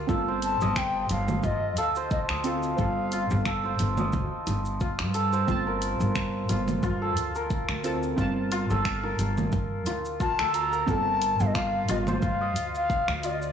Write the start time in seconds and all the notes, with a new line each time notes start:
Already playing: F4 G4 A#4
0.07 G1 C4 F4 A4, kick, high conga, shaker
0.28 C5
0.42 A5, closed hi-hat, shaker
0.61 G1 D#5, shaker
0.76 G5, finger snap, kick, shaker
1.09 G1 F5, closed hi-hat, shaker
1.28 high conga, low conga, shaker
1.43 G2 F4 D#5, kick, shaker
1.77 D2 A4 F5, closed hi-hat, shaker
1.96 C5, shaker
2.11 D#5, kick, shaker
2.29 D2 D#5, finger snap
2.44 C4 F4 A4 F5, closed hi-hat, shaker
2.63 shaker
2.76 G1 C4 F4 A4, kick, shaker
3.12 F4, closed hi-hat, shaker
3.30 G1, shaker
3.45 A4, finger snap, kick, shaker
3.64 C5, high bongo
3.79 G1, closed hi-hat, shaker
3.97 D#5, high conga, low conga, shaker
4.13 D2, kick, shaker
4.47 G1, closed hi-hat, high bongo, shaker
4.66 shaker
4.81 F4, kick, shaker
4.99 G2, finger snap
5.14 A4, closed hi-hat, shaker
5.33 C5, shaker
5.47 G1 C4 F4, kick, high conga, shaker
5.51 A5
5.67 A#4
5.82 closed hi-hat, shaker
6.00 G1, shaker
6.16 finger snap, kick, shaker
6.49 G1 F4, closed hi-hat, shaker
6.68 high conga, low conga, shaker
6.83 G2 F4, kick, shaker
7.02 A4
7.17 D2, closed hi-hat, shaker
7.35 A#4, shaker
7.50 kick, shaker
7.69 D2, finger snap
7.83 C4 F4 A4, closed hi-hat, shaker
8.03 shaker
8.16 G1 C4 F4, kick, shaker
8.20 A5
8.52 F4, closed hi-hat, shaker
8.70 G1 A4, shaker
8.85 finger snap, kick, shaker
9.04 A#4, high bongo
9.19 G1, closed hi-hat, shaker
9.37 high conga, low conga, shaker
9.52 G2, kick, shaker
9.86 D2 F4, closed hi-hat, high bongo, shaker
10.05 shaker
10.20 F4 A5, kick, shaker
10.39 D2 A4, finger snap
10.54 A#5, closed hi-hat, shaker
10.73 A#4, shaker
10.86 G1 C4 F4 A4 A5, kick, high conga, shaker
11.22 closed hi-hat, shaker
11.40 G1 F5, shaker
11.47 D#5
11.54 F4 F5, finger snap, kick, shaker
11.89 G1 F4 D#5, closed hi-hat, shaker
12.07 C5, high conga, low conga, shaker
12.22 G2 F5, kick, shaker
12.41 D#5
12.56 D2, closed hi-hat, shaker
12.75 F5, shaker
12.90 kick, shaker
13.08 D2, finger snap
13.23 F4 D5, closed hi-hat, shaker
13.32 D#5
13.41 D5, shaker